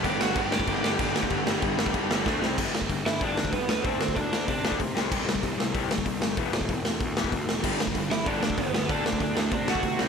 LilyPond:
<<
  \new Staff \with { instrumentName = "Lead electric guitar" } { \time 4/4 \key g \major \tempo 4 = 190 <g' g''>8 <fis' fis''>8 <g' g''>2.~ | <g' g''>2. r4 | r4. <e' e''>8 <d' d''>4 <b b'>4 | <c' c''>4 <d' d''>4 <d' d''>4 r4 |
r1 | r1 | r4. <e' e''>8 <d' d''>4 <b b'>4 | <d' d''>2 <d' d''>8 <fis' fis''>4 r8 | }
  \new Staff \with { instrumentName = "Distorted electric guitar" } { \clef bass \time 4/4 \key g \major <g, d g>8 <g, d g>8 <g, d g>8 <g, d g>8 <g, d g>8 <g, d g>8 <g, d g>8 <g, d g>8 | <g, d g>8 <g, d g>8 <g, d g>8 <g, d g>8 <g, d g>8 <g, d g>8 <d a d'>8 <c g c'>8 | r1 | r1 |
r1 | r1 | <g, d g>8 <g, d>8 <g, d>8 <g, d>8 <g, d g>8 <g, d>8 <g, d>8 <g, d>8 | <d a d'>8 <d a>8 <d a>8 <d a>8 <d a>8 <d a d'>8 <d a>8 <c g c'>8 | }
  \new Staff \with { instrumentName = "Overdriven electric guitar" } { \clef bass \time 4/4 \key g \major <g, d g>8 <g, d g>8 <g, d g>8 <g, d g>8 <g, d g>8 <g, d g>8 <g, d g>8 <g, d g>8 | <g, d g>8 <g, d g>8 <g, d g>8 <g, d g>8 <g, d g>8 <g, d g>8 <d a d'>8 <c g c'>8 | <g, d g>8 <g, d>8 <g, d>8 <g, d>8 <g, d g>8 <g, d>8 <g, d>8 <g, d>8 | <d a d'>8 <d a>8 <d a>8 <d a>8 <d a>8 <d a d'>8 <d a>8 <c g c'>8 |
<c g c'>8 <c g>8 <c g>8 <c g>8 <c g c'>8 <c g>8 <c g>8 <c g>8 | <e, b, e>8 <e, b,>8 <e, b,>8 <e, b,>8 <e, b,>8 <e, b, e>8 <e, b,>8 <e, b,>8 | <g, d g>8 <g, d>8 <g, d>8 <g, d>8 <g, d g>8 <g, d>8 <g, d>8 <g, d>8 | <d a d'>8 <d a>8 <d a>8 <d a>8 <d a>8 <d a d'>8 <d a>8 <c g c'>8 | }
  \new Staff \with { instrumentName = "Picked electric bass" } { \clef bass \time 4/4 \key g \major g,,8 g,,8 g,,4 g,,8 g,,8 g,,4 | g,,8 g,,8 g,,8 g,,8 g,,8 g,,8 d,8 c,8 | g,,8 g,,8 g,,8 g,,8 g,,8 d,8 g,,8 d,8 | d,8 d,8 d,8 d,8 c8 d,8 c8 c,8 |
c,8 c,8 c,8 c,8 c,8 g,,8 c,8 g,,8 | e,,8 e,,8 e,,8 e,,8 d,8 e,,8 d,8 e,,8 | g,,8 g,,8 g,,8 g,,8 g,,8 d,8 g,,8 d,8 | d,8 d,8 d,8 d,8 c8 d,8 c8 c,8 | }
  \new DrumStaff \with { instrumentName = "Drums" } \drummode { \time 4/4 <cymc bd>8 sn8 <cymc bd>8 sn16 bd16 <cymc bd>8 sn8 <cymc bd>8 sn16 bd16 | <cymc bd>8 sn8 <cymc bd>8 sn16 bd16 <cymc bd>8 sn8 <bd sn>8 sn8 | <cymc bd>8 sn16 bd16 <hho bd>8 sn8 <hho bd>8 sn16 bd16 <hho bd>8 sn8 | <hho bd>8 sn16 bd16 <hho bd>8 sn8 <hho bd>8 sn16 bd16 <hho bd>8 sn8 |
<cymc bd>8 sn16 bd16 <hho bd>8 sn8 <hho bd>8 sn16 bd16 <hho bd>8 sn8 | <hho bd>8 sn16 bd16 <hho bd>8 sn8 <hho bd>8 sn16 bd16 <hho bd>8 sn8 | <cymc bd>8 sn16 bd16 <hho bd>8 sn8 <hho bd>8 sn16 bd16 <hho bd>8 sn8 | <hho bd>8 sn16 bd16 <hho bd>8 sn8 <hho bd>8 sn16 bd16 <hho bd>8 sn8 | }
>>